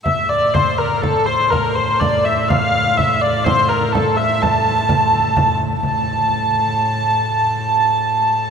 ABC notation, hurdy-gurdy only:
X:1
M:3/4
L:1/8
Q:1/4=126
K:Aphr
V:1 name="Hurdy-gurdy"
e d c B A c | B c d e f2 | e d c B A e | a4- a z |
a6- | a6 |]